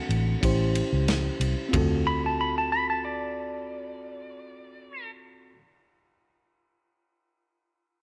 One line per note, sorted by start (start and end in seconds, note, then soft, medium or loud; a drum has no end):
0.00 0.39 C4 medium
0.00 0.40 D4 medium
0.00 0.41 F#4 medium
0.00 0.41 A4 medium
0.00 0.71 F#5 loud
0.09 0.34 A1 loud
0.09 ride soft
0.41 0.81 A1 loud
0.41 1.70 C#4 medium
0.41 1.70 E4 medium
0.41 1.71 G4 medium
0.41 1.72 C5 medium
0.41 kick medium
0.41 ride medium
0.75 ride medium
0.93 1.29 C#2 medium
1.08 snare loud
1.08 ride medium
1.40 1.54 C2 medium
1.40 ride medium
1.69 5.52 C4 medium
1.69 5.55 F4 medium
1.73 5.57 D2 medium
1.73 5.58 F#4 medium
1.73 5.60 A4 medium
1.73 kick medium
1.73 floor tom medium
1.73 ride bell medium
2.07 2.24 B5 loud
2.26 2.39 A5 medium
2.41 2.57 B5 medium
2.58 2.72 A5 medium
2.72 2.89 B5 loud
2.90 3.04 A5 medium
3.05 5.11 D5 medium